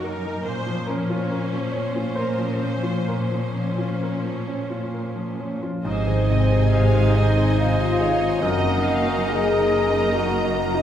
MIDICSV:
0, 0, Header, 1, 11, 480
1, 0, Start_track
1, 0, Key_signature, -5, "minor"
1, 0, Tempo, 852273
1, 257, Time_signature, 3, 2, 24, 8
1, 1218, Tempo, 923077
1, 3138, Tempo, 862069
1, 4098, Tempo, 842697
1, 5944, End_track
2, 0, Start_track
2, 0, Title_t, "Cor anglais"
2, 0, Program_c, 0, 69
2, 3139, Note_on_c, 0, 75, 52
2, 5944, Note_off_c, 0, 75, 0
2, 5944, End_track
3, 0, Start_track
3, 0, Title_t, "Violin section"
3, 0, Program_c, 1, 48
3, 3138, Note_on_c, 1, 72, 60
3, 3366, Note_off_c, 1, 72, 0
3, 3379, Note_on_c, 1, 75, 54
3, 3624, Note_off_c, 1, 75, 0
3, 3624, Note_on_c, 1, 77, 59
3, 3859, Note_off_c, 1, 77, 0
3, 3861, Note_on_c, 1, 75, 59
3, 4097, Note_on_c, 1, 72, 59
3, 4098, Note_off_c, 1, 75, 0
3, 4334, Note_on_c, 1, 73, 56
3, 4338, Note_off_c, 1, 72, 0
3, 4573, Note_on_c, 1, 75, 63
3, 4580, Note_off_c, 1, 73, 0
3, 4816, Note_off_c, 1, 75, 0
3, 4819, Note_on_c, 1, 77, 59
3, 5063, Note_on_c, 1, 75, 68
3, 5064, Note_off_c, 1, 77, 0
3, 5944, Note_off_c, 1, 75, 0
3, 5944, End_track
4, 0, Start_track
4, 0, Title_t, "Violin section"
4, 0, Program_c, 2, 48
4, 0, Note_on_c, 2, 63, 56
4, 0, Note_on_c, 2, 70, 56
4, 234, Note_off_c, 2, 63, 0
4, 236, Note_off_c, 2, 70, 0
4, 262, Note_on_c, 2, 61, 52
4, 264, Note_on_c, 2, 72, 54
4, 3012, Note_off_c, 2, 61, 0
4, 3033, Note_off_c, 2, 72, 0
4, 3141, Note_on_c, 2, 75, 58
4, 3141, Note_on_c, 2, 80, 54
4, 4561, Note_off_c, 2, 80, 0
4, 4588, Note_on_c, 2, 82, 60
4, 5944, Note_off_c, 2, 75, 0
4, 5944, Note_off_c, 2, 82, 0
4, 5944, End_track
5, 0, Start_track
5, 0, Title_t, "Clarinet"
5, 0, Program_c, 3, 71
5, 3133, Note_on_c, 3, 72, 55
5, 4582, Note_on_c, 3, 70, 60
5, 4590, Note_off_c, 3, 72, 0
5, 5944, Note_off_c, 3, 70, 0
5, 5944, End_track
6, 0, Start_track
6, 0, Title_t, "French horn section"
6, 0, Program_c, 4, 60
6, 3376, Note_on_c, 4, 60, 71
6, 3839, Note_off_c, 4, 60, 0
6, 3862, Note_on_c, 4, 63, 77
6, 4098, Note_off_c, 4, 63, 0
6, 4104, Note_on_c, 4, 65, 76
6, 4580, Note_on_c, 4, 66, 85
6, 4585, Note_off_c, 4, 65, 0
6, 5056, Note_off_c, 4, 66, 0
6, 5067, Note_on_c, 4, 68, 85
6, 5542, Note_on_c, 4, 66, 87
6, 5543, Note_off_c, 4, 68, 0
6, 5900, Note_off_c, 4, 66, 0
6, 5904, Note_on_c, 4, 63, 76
6, 5944, Note_off_c, 4, 63, 0
6, 5944, End_track
7, 0, Start_track
7, 0, Title_t, "Grand piano"
7, 0, Program_c, 5, 0
7, 0, Control_c, 5, 64, 127
7, 0, Note_on_c, 5, 42, 54
7, 0, Note_on_c, 5, 54, 36
7, 0, Note_on_c, 5, 58, 42
7, 0, Note_on_c, 5, 63, 33
7, 0, Note_on_c, 5, 70, 41
7, 0, Note_on_c, 5, 75, 62
7, 0, Note_on_c, 5, 78, 62
7, 0, Note_on_c, 5, 82, 63
7, 18, Note_off_c, 5, 58, 0
7, 18, Note_on_c, 5, 58, 40
7, 89, Note_off_c, 5, 54, 0
7, 138, Note_off_c, 5, 63, 0
7, 138, Note_on_c, 5, 63, 35
7, 209, Note_off_c, 5, 58, 0
7, 232, Note_off_c, 5, 82, 0
7, 233, Note_off_c, 5, 42, 0
7, 255, Note_on_c, 5, 46, 47
7, 257, Note_off_c, 5, 63, 0
7, 267, Control_c, 5, 64, 0
7, 269, Note_off_c, 5, 75, 0
7, 269, Note_off_c, 5, 78, 0
7, 270, Note_off_c, 5, 70, 0
7, 363, Control_c, 5, 64, 127
7, 374, Note_on_c, 5, 53, 36
7, 487, Note_on_c, 5, 70, 58
7, 501, Note_on_c, 5, 61, 36
7, 567, Note_off_c, 5, 53, 0
7, 618, Note_on_c, 5, 65, 38
7, 690, Note_off_c, 5, 61, 0
7, 730, Note_off_c, 5, 70, 0
7, 739, Note_on_c, 5, 70, 37
7, 808, Note_off_c, 5, 65, 0
7, 861, Note_on_c, 5, 53, 30
7, 928, Note_off_c, 5, 70, 0
7, 968, Note_on_c, 5, 73, 57
7, 977, Note_on_c, 5, 61, 37
7, 1050, Note_off_c, 5, 53, 0
7, 1103, Note_on_c, 5, 65, 30
7, 1170, Note_off_c, 5, 61, 0
7, 1197, Note_off_c, 5, 73, 0
7, 1213, Note_on_c, 5, 72, 57
7, 1219, Note_on_c, 5, 70, 33
7, 1290, Note_off_c, 5, 65, 0
7, 1333, Note_on_c, 5, 53, 31
7, 1404, Note_off_c, 5, 70, 0
7, 1451, Note_on_c, 5, 61, 32
7, 1522, Note_off_c, 5, 53, 0
7, 1566, Note_on_c, 5, 65, 28
7, 1644, Note_off_c, 5, 61, 0
7, 1670, Note_off_c, 5, 72, 0
7, 1671, Note_off_c, 5, 46, 0
7, 1691, Note_off_c, 5, 65, 0
7, 1692, Note_on_c, 5, 46, 38
7, 1694, Note_on_c, 5, 70, 42
7, 1704, Control_c, 5, 64, 0
7, 1801, Control_c, 5, 64, 127
7, 1817, Note_on_c, 5, 53, 27
7, 1936, Note_on_c, 5, 61, 28
7, 2014, Note_off_c, 5, 53, 0
7, 2060, Note_on_c, 5, 65, 28
7, 2134, Note_off_c, 5, 61, 0
7, 2176, Note_off_c, 5, 70, 0
7, 2184, Note_on_c, 5, 70, 30
7, 2256, Note_off_c, 5, 65, 0
7, 2306, Note_on_c, 5, 53, 23
7, 2376, Note_off_c, 5, 70, 0
7, 2420, Note_on_c, 5, 61, 32
7, 2496, Note_off_c, 5, 53, 0
7, 2538, Note_on_c, 5, 65, 25
7, 2612, Note_off_c, 5, 61, 0
7, 2659, Note_on_c, 5, 70, 26
7, 2731, Note_off_c, 5, 65, 0
7, 2774, Note_on_c, 5, 53, 27
7, 2852, Note_off_c, 5, 70, 0
7, 2898, Note_on_c, 5, 61, 27
7, 2971, Note_off_c, 5, 53, 0
7, 3019, Note_on_c, 5, 65, 25
7, 3091, Note_off_c, 5, 61, 0
7, 3118, Note_off_c, 5, 46, 0
7, 3134, Note_on_c, 5, 44, 53
7, 3137, Note_off_c, 5, 65, 0
7, 3151, Control_c, 5, 64, 0
7, 3232, Control_c, 5, 64, 127
7, 3257, Note_on_c, 5, 68, 38
7, 3385, Note_on_c, 5, 75, 41
7, 3454, Note_off_c, 5, 68, 0
7, 3507, Note_on_c, 5, 68, 40
7, 3578, Note_off_c, 5, 75, 0
7, 3626, Note_on_c, 5, 75, 43
7, 3699, Note_off_c, 5, 68, 0
7, 3747, Note_on_c, 5, 68, 39
7, 3817, Note_off_c, 5, 75, 0
7, 3868, Note_on_c, 5, 75, 46
7, 3936, Note_off_c, 5, 68, 0
7, 3982, Note_on_c, 5, 68, 37
7, 4054, Note_off_c, 5, 75, 0
7, 4101, Note_on_c, 5, 63, 42
7, 4171, Note_off_c, 5, 68, 0
7, 4220, Note_on_c, 5, 75, 44
7, 4292, Note_off_c, 5, 63, 0
7, 4338, Note_on_c, 5, 68, 48
7, 4413, Note_off_c, 5, 75, 0
7, 4459, Note_on_c, 5, 75, 40
7, 4533, Note_off_c, 5, 68, 0
7, 4558, Note_off_c, 5, 44, 0
7, 4578, Note_on_c, 5, 42, 58
7, 4582, Note_off_c, 5, 75, 0
7, 4593, Control_c, 5, 64, 0
7, 4688, Control_c, 5, 64, 127
7, 4702, Note_on_c, 5, 70, 39
7, 4826, Note_on_c, 5, 75, 42
7, 4898, Note_off_c, 5, 70, 0
7, 4953, Note_on_c, 5, 70, 42
7, 5019, Note_off_c, 5, 75, 0
7, 5069, Note_on_c, 5, 75, 48
7, 5142, Note_off_c, 5, 70, 0
7, 5186, Note_on_c, 5, 70, 39
7, 5259, Note_off_c, 5, 75, 0
7, 5302, Note_on_c, 5, 75, 50
7, 5377, Note_off_c, 5, 70, 0
7, 5421, Note_on_c, 5, 70, 39
7, 5494, Note_off_c, 5, 75, 0
7, 5544, Note_on_c, 5, 63, 43
7, 5613, Note_off_c, 5, 70, 0
7, 5663, Note_on_c, 5, 75, 41
7, 5734, Note_off_c, 5, 63, 0
7, 5787, Note_on_c, 5, 70, 49
7, 5853, Note_off_c, 5, 75, 0
7, 5901, Note_on_c, 5, 75, 46
7, 5944, Note_off_c, 5, 42, 0
7, 5944, Note_off_c, 5, 70, 0
7, 5944, Note_off_c, 5, 75, 0
7, 5944, End_track
8, 0, Start_track
8, 0, Title_t, "Viola section"
8, 0, Program_c, 6, 48
8, 21, Note_on_c, 6, 70, 57
8, 258, Note_off_c, 6, 70, 0
8, 258, Note_on_c, 6, 72, 58
8, 497, Note_off_c, 6, 72, 0
8, 499, Note_on_c, 6, 61, 60
8, 1219, Note_off_c, 6, 61, 0
8, 1219, Note_on_c, 6, 70, 46
8, 1447, Note_off_c, 6, 70, 0
8, 1454, Note_on_c, 6, 72, 45
8, 1694, Note_on_c, 6, 61, 45
8, 1695, Note_off_c, 6, 72, 0
8, 2903, Note_off_c, 6, 61, 0
8, 3136, Note_on_c, 6, 63, 54
8, 3137, Note_on_c, 6, 48, 56
8, 4559, Note_off_c, 6, 48, 0
8, 4580, Note_on_c, 6, 58, 58
8, 5944, Note_off_c, 6, 58, 0
8, 5944, Note_off_c, 6, 63, 0
8, 5944, End_track
9, 0, Start_track
9, 0, Title_t, "Harp"
9, 0, Program_c, 7, 46
9, 0, Note_on_c, 7, 42, 48
9, 0, Note_on_c, 7, 58, 40
9, 0, Note_on_c, 7, 63, 34
9, 0, Note_on_c, 7, 70, 48
9, 16, Note_on_c, 7, 54, 41
9, 130, Note_off_c, 7, 58, 0
9, 137, Note_on_c, 7, 58, 40
9, 254, Note_on_c, 7, 46, 43
9, 275, Note_off_c, 7, 54, 0
9, 276, Note_off_c, 7, 42, 0
9, 277, Note_off_c, 7, 63, 0
9, 376, Note_on_c, 7, 53, 40
9, 490, Note_off_c, 7, 58, 0
9, 497, Note_on_c, 7, 58, 38
9, 621, Note_on_c, 7, 61, 39
9, 847, Note_off_c, 7, 70, 0
9, 854, Note_on_c, 7, 70, 37
9, 1085, Note_off_c, 7, 70, 0
9, 1092, Note_on_c, 7, 70, 36
9, 1323, Note_off_c, 7, 61, 0
9, 1329, Note_on_c, 7, 61, 32
9, 1442, Note_off_c, 7, 53, 0
9, 1449, Note_on_c, 7, 53, 32
9, 1558, Note_off_c, 7, 58, 0
9, 1564, Note_on_c, 7, 58, 31
9, 1680, Note_off_c, 7, 46, 0
9, 1687, Note_on_c, 7, 46, 36
9, 1801, Note_off_c, 7, 53, 0
9, 1807, Note_on_c, 7, 53, 29
9, 1923, Note_off_c, 7, 58, 0
9, 1930, Note_on_c, 7, 58, 29
9, 2048, Note_off_c, 7, 61, 0
9, 2054, Note_on_c, 7, 61, 31
9, 2292, Note_off_c, 7, 70, 0
9, 2298, Note_on_c, 7, 70, 29
9, 2529, Note_off_c, 7, 70, 0
9, 2535, Note_on_c, 7, 70, 31
9, 2770, Note_off_c, 7, 61, 0
9, 2777, Note_on_c, 7, 61, 28
9, 2890, Note_off_c, 7, 53, 0
9, 2897, Note_on_c, 7, 53, 28
9, 3011, Note_off_c, 7, 58, 0
9, 3017, Note_on_c, 7, 58, 26
9, 3136, Note_on_c, 7, 44, 51
9, 3154, Note_off_c, 7, 70, 0
9, 3155, Note_off_c, 7, 46, 0
9, 3156, Note_off_c, 7, 53, 0
9, 3156, Note_off_c, 7, 58, 0
9, 3156, Note_off_c, 7, 61, 0
9, 3259, Note_on_c, 7, 51, 44
9, 3382, Note_on_c, 7, 48, 43
9, 3503, Note_on_c, 7, 63, 45
9, 3620, Note_on_c, 7, 68, 43
9, 3734, Note_off_c, 7, 63, 0
9, 3740, Note_on_c, 7, 63, 45
9, 3857, Note_on_c, 7, 75, 51
9, 3976, Note_on_c, 7, 84, 44
9, 4087, Note_off_c, 7, 75, 0
9, 4094, Note_on_c, 7, 75, 54
9, 4330, Note_off_c, 7, 63, 0
9, 4336, Note_on_c, 7, 63, 49
9, 4459, Note_on_c, 7, 60, 44
9, 4576, Note_on_c, 7, 42, 55
9, 4599, Note_off_c, 7, 68, 0
9, 4599, Note_off_c, 7, 84, 0
9, 4601, Note_off_c, 7, 44, 0
9, 4601, Note_off_c, 7, 48, 0
9, 4601, Note_off_c, 7, 51, 0
9, 4601, Note_off_c, 7, 60, 0
9, 4701, Note_on_c, 7, 54, 48
9, 4821, Note_on_c, 7, 58, 44
9, 4936, Note_off_c, 7, 63, 0
9, 4943, Note_on_c, 7, 63, 46
9, 5055, Note_off_c, 7, 75, 0
9, 5062, Note_on_c, 7, 75, 42
9, 5181, Note_on_c, 7, 70, 46
9, 5294, Note_off_c, 7, 75, 0
9, 5301, Note_on_c, 7, 75, 51
9, 5419, Note_on_c, 7, 87, 49
9, 5534, Note_off_c, 7, 75, 0
9, 5541, Note_on_c, 7, 75, 55
9, 5648, Note_off_c, 7, 70, 0
9, 5655, Note_on_c, 7, 70, 49
9, 5772, Note_off_c, 7, 75, 0
9, 5779, Note_on_c, 7, 75, 48
9, 5886, Note_off_c, 7, 63, 0
9, 5893, Note_on_c, 7, 63, 47
9, 5944, Note_off_c, 7, 42, 0
9, 5944, Note_off_c, 7, 54, 0
9, 5944, Note_off_c, 7, 58, 0
9, 5944, Note_off_c, 7, 63, 0
9, 5944, Note_off_c, 7, 70, 0
9, 5944, Note_off_c, 7, 75, 0
9, 5944, Note_off_c, 7, 87, 0
9, 5944, End_track
10, 0, Start_track
10, 0, Title_t, "Cello section"
10, 0, Program_c, 8, 48
10, 0, Note_on_c, 8, 42, 58
10, 256, Note_off_c, 8, 42, 0
10, 259, Note_on_c, 8, 46, 57
10, 3010, Note_off_c, 8, 46, 0
10, 3141, Note_on_c, 8, 44, 56
10, 4561, Note_off_c, 8, 44, 0
10, 4580, Note_on_c, 8, 42, 64
10, 5944, Note_off_c, 8, 42, 0
10, 5944, End_track
11, 0, Start_track
11, 0, Title_t, "Double bass section"
11, 0, Program_c, 10, 48
11, 3137, Note_on_c, 10, 32, 61
11, 4559, Note_off_c, 10, 32, 0
11, 4576, Note_on_c, 10, 30, 61
11, 5944, Note_off_c, 10, 30, 0
11, 5944, End_track
0, 0, End_of_file